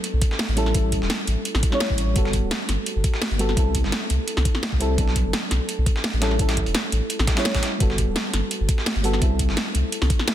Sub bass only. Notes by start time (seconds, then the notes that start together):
0.13 B1
0.48 A1
0.75 A1
1.02 E1
1.27 A1
1.55 A1
1.90 A1
2.16 G1
2.43 D1
2.69 G1
2.96 G1
3.31 G1
3.57 C2
3.84 G1
4.10 C2
4.37 C2
4.72 C2
4.98 B1
5.25 F#1
5.51 B1
5.78 B1
6.13 A1
6.39 A1
6.66 E1
6.92 A1
7.19 A1
7.55 A1
7.80 G1
8.07 D1
8.34 G1
8.60 G1
8.96 G1
9.22 C2
9.49 G1
9.75 C2
10.02 C2